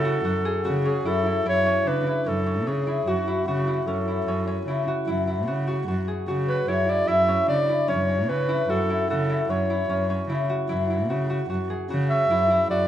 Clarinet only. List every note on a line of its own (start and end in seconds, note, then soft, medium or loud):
0.00 0.81 A4 medium
0.86 1.09 G#4 medium
1.07 1.47 A4 medium
1.49 1.89 C#5 medium
1.88 2.29 B4 medium
2.27 2.70 A4 medium
2.68 3.09 G#4 medium
3.08 3.47 F#4 medium
3.48 3.88 F#4 medium
3.87 4.67 A4 medium
6.48 6.70 B4 medium
6.68 6.91 C#5 medium
6.90 7.09 D5 medium
7.08 7.48 E5 medium
7.49 7.86 D5 medium
7.89 8.31 C#5 medium
8.29 8.71 B4 medium
8.70 9.09 A4 medium
9.10 9.51 A4 medium
9.50 10.30 C#5 medium
12.10 12.66 E5 medium
12.70 12.88 D5 medium